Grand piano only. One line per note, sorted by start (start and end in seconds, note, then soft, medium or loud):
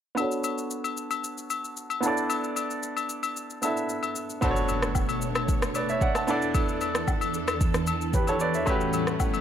0.15 1.98 B3 medium
0.15 1.99 D4 medium
0.15 2.00 F#4 medium
0.20 2.01 A4 medium
0.20 2.02 C#5 medium
2.01 3.58 B3 medium
2.01 3.59 D4 medium
2.01 3.60 E4 medium
2.06 3.61 A4 medium
2.06 3.62 D5 medium
3.62 4.40 B3 medium
3.62 4.40 D4 soft
3.62 4.43 E4 medium
3.62 4.42 A4 soft
3.62 4.44 E5 medium
4.41 5.27 B3 medium
4.41 5.27 D4 medium
4.41 5.28 F#4 medium
4.41 5.28 A4 medium
4.41 4.50 C5 medium
4.51 5.32 C#5 medium
5.76 5.89 B4 medium
5.76 5.88 D5 medium
5.90 6.02 C#5 medium
5.90 6.01 E5 medium
6.02 6.15 D5 medium
6.02 6.15 F#5 medium
6.16 6.41 F#5 medium
6.16 6.41 A5 medium
6.27 7.13 B3 medium
6.27 7.13 D4 medium
6.27 7.14 E4 medium
6.27 7.14 A4 medium
6.27 7.14 D5 loud
8.14 8.28 G4 medium
8.14 8.27 B4 medium
8.28 8.41 A4 medium
8.28 8.40 C#5 medium
8.41 8.54 B4 medium
8.41 8.54 D5 medium
8.55 8.80 C#5 medium
8.55 8.80 E5 medium
8.66 9.41 A3 medium
8.66 9.41 C#4 medium
8.66 9.41 F#4 medium
8.66 9.41 G4 medium
8.66 9.41 B4 medium